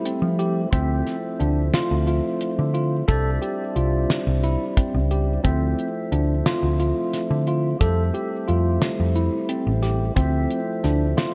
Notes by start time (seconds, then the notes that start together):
Already playing: G3 A3 C4 E4
0.05 C4, closed hi-hat
0.22 F3
0.39 G4, closed hi-hat
0.71 D2 F3 A3 C4 E4, kick, closed hi-hat
1.07 snare, closed hi-hat
1.40 D2 D4, closed hi-hat
1.74 F4, snare, closed hi-hat
1.91 D2
2.07 F4, closed hi-hat
2.41 closed hi-hat
2.59 D3
2.74 F4, closed hi-hat
3.08 C2 G3 C4 D4 E4 A4, kick, closed hi-hat
3.42 G4, closed hi-hat
3.76 C2 F4, closed hi-hat
4.10 snare, closed hi-hat
4.27 C2
4.43 E4, closed hi-hat
4.77 C4, kick, closed hi-hat
4.94 C#2
5.11 G4, closed hi-hat
5.43 D2 F3 A3 C4 E4, kick, closed hi-hat
5.79 closed hi-hat
6.12 D2 D4, closed hi-hat
6.46 F4, snare, closed hi-hat
6.63 D2
6.80 F4, closed hi-hat
7.13 snare, closed hi-hat
7.30 D3
7.47 F4, closed hi-hat
7.79 F2 G3 A3 C4 E4 A4, kick, closed hi-hat
8.14 G4, closed hi-hat
8.48 F2 F4, closed hi-hat
8.82 snare, closed hi-hat
9.00 F2
9.15 E4, closed hi-hat
9.49 C4, closed hi-hat
9.67 A1
9.82 G4, snare, closed hi-hat
10.15 D2 F3 A3 C4 E4, kick, closed hi-hat
10.50 closed hi-hat
10.84 D2 D4, snare, closed hi-hat
11.17 F4, snare, closed hi-hat